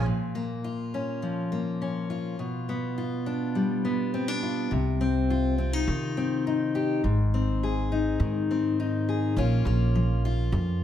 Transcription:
0.06 steel-string acoustic guitar A#2
0.35 steel-string acoustic guitar A#3
0.64 steel-string acoustic guitar F4
0.94 steel-string acoustic guitar C#4
1.22 steel-string acoustic guitar F3
1.52 steel-string acoustic guitar A#3
1.82 steel-string acoustic guitar C#4
2.10 steel-string acoustic guitar F4
2.39 steel-string acoustic guitar B2
2.69 steel-string acoustic guitar B3
2.98 steel-string acoustic guitar F4
3.26 steel-string acoustic guitar D4
3.55 steel-string acoustic guitar G3
3.85 steel-string acoustic guitar B3
4.14 steel-string acoustic guitar C4
4.28 steel-string acoustic guitar D4
4.43 steel-string acoustic guitar F4
4.71 upright bass C2, steel-string acoustic guitar C3
5.01 steel-string acoustic guitar C4
5.30 steel-string acoustic guitar F4
5.58 steel-string acoustic guitar C4
5.73 steel-string acoustic guitar D#4
5.88 upright bass C3, steel-string acoustic guitar D#3
6.17 steel-string acoustic guitar C4
6.47 steel-string acoustic guitar D#4
6.75 steel-string acoustic guitar G4
7.04 upright bass G#1, steel-string acoustic guitar G#2
7.34 steel-string acoustic guitar C4
7.63 steel-string acoustic guitar G#4
7.92 steel-string acoustic guitar D#4
8.20 upright bass G#2, steel-string acoustic guitar D#3
8.51 steel-string acoustic guitar C4
8.80 steel-string acoustic guitar D#4
9.09 steel-string acoustic guitar G#4
9.36 upright bass A#1, steel-string acoustic guitar A#2 A#3 C#4 F4
9.65 upright bass A#1, steel-string acoustic guitar A#3
9.96 steel-string acoustic guitar F3
10.25 steel-string acoustic guitar F4
10.52 upright bass F2, steel-string acoustic guitar F2

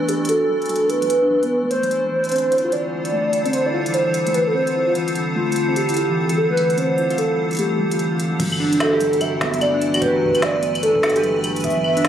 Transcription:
Already playing: ambient pad E3 A3 D4, soft synth lead B4
0.09 synth pluck D4, soft synth lead G4, closed hi-hat
0.25 closed hi-hat
0.29 synth pluck F#4, soft synth lead A4, closed hi-hat
0.49 synth pluck F#3
0.62 closed hi-hat
0.66 closed hi-hat
0.69 synth pluck F#3, closed hi-hat
0.76 closed hi-hat
0.90 synth pluck B3, soft synth lead B4, closed hi-hat
1.02 synth pluck F#3, closed hi-hat
1.10 closed hi-hat
1.23 synth pluck D4
1.30 synth pluck F#3
1.43 synth pluck B3, closed hi-hat
1.63 synth pluck A3
1.71 soft synth lead C5, closed hi-hat
1.83 synth pluck F#3, closed hi-hat
1.91 ambient pad D3, closed hi-hat
2.04 ambient pad G3, synth pluck A3
2.11 synth pluck E3
2.24 closed hi-hat
2.29 ambient pad C4, synth pluck C4, closed hi-hat
2.32 closed hi-hat
2.36 closed hi-hat
2.38 closed hi-hat
2.52 synth pluck E4, ambient pad A4, closed hi-hat
2.58 closed hi-hat
2.64 synth pluck F4
2.71 synth pluck E3, ambient pad F4, soft synth lead D5, closed hi-hat
2.92 synth pluck E3
3.05 closed hi-hat
3.13 synth pluck A3
3.25 synth pluck E3
3.33 closed hi-hat
3.46 synth pluck C4, closed hi-hat
3.53 soft synth lead C5, closed hi-hat
3.66 synth pluck E4, soft synth lead D5
3.74 synth pluck F4
3.86 synth pluck E3, closed hi-hat
3.94 soft synth lead C5, closed hi-hat
4.06 synth pluck E3
4.14 closed hi-hat
4.27 synth pluck A3, closed hi-hat
4.34 synth pluck E3, soft synth lead B4, closed hi-hat
4.47 soft synth lead A4
4.55 synth pluck C4, soft synth lead C5
4.67 closed hi-hat
4.75 synth pluck E4
4.88 synth pluck F4
4.95 synth pluck E3, closed hi-hat
5.08 closed hi-hat
5.15 synth pluck E3, closed hi-hat
5.36 synth pluck A3, soft synth lead F4
5.48 synth pluck E3, closed hi-hat
5.56 closed hi-hat
5.68 synth pluck C4
5.76 soft synth lead G4, closed hi-hat
5.89 synth pluck E4, closed hi-hat
5.94 synth pluck F4, closed hi-hat
5.97 closed hi-hat
6.09 synth pluck E3
6.29 synth pluck E3, closed hi-hat
6.37 soft synth lead A4
6.50 synth pluck A3, soft synth lead B4
6.57 synth pluck E3, closed hi-hat
6.70 closed hi-hat
6.78 synth pluck C4, soft synth lead C5, closed hi-hat
6.98 synth pluck E4, closed hi-hat
7.10 synth pluck F4, closed hi-hat
7.18 synth pluck E3, soft synth lead A4, closed hi-hat
7.38 synth pluck E3
7.51 closed hi-hat
7.53 closed hi-hat
7.55 closed hi-hat
7.57 closed hi-hat
7.59 synth pluck A3, soft synth lead G4, closed hi-hat
7.71 synth pluck E3
7.79 synth pluck G3
7.92 synth pluck F4, closed hi-hat
7.99 synth pluck E3, closed hi-hat
8.12 synth pluck F4
8.20 closed hi-hat
8.32 synth pluck F3
8.40 sub bass G1, ambient pad E3, synth pluck F#3, kick, closed hi-hat, crash
8.52 claves
8.60 ambient pad A3, synth pluck D4
8.73 closed hi-hat
8.80 synth pluck F#4, soft synth lead A4, snare, closed hi-hat, claves
8.92 ambient pad D4 G4, synth pluck G4
9.01 synth pluck F#3, closed hi-hat, cabasa
9.13 closed hi-hat
9.21 synth pluck F#3, soft synth lead E5, closed hi-hat, claves
9.41 synth pluck B3, kick, snare, closed hi-hat
9.54 synth pluck F#3, ambient pad B4, closed hi-hat
9.61 soft synth lead D5, closed hi-hat, claves
9.74 synth pluck D4
9.82 closed hi-hat
9.94 synth pluck F#4, closed hi-hat, claves
10.02 synth pluck G4, soft synth lead B4, kick, closed hi-hat
10.14 synth pluck F#3
10.22 kick
10.25 kick
10.28 kick
10.31 synth pluck F#3, kick, closed hi-hat, claves
10.42 soft synth lead D5, snare, closed hi-hat
10.55 synth pluck B3
10.63 synth pluck F#3, closed hi-hat
10.75 closed hi-hat, claves
10.83 synth pluck D4, soft synth lead A4, closed hi-hat
10.95 kick
11.03 synth pluck F#4, snare, cabasa, claves
11.10 closed hi-hat
11.16 synth pluck G4, closed hi-hat
11.24 synth pluck F#3, closed hi-hat
11.44 synth pluck F#3, closed hi-hat, claves
11.56 closed hi-hat, cabasa
11.60 soft synth lead E5, closed hi-hat, cabasa
11.64 synth pluck B3, kick, cabasa
11.70 cabasa
11.77 synth pluck F#3
11.84 claves
11.97 synth pluck D4, closed hi-hat
12.05 snare, closed hi-hat

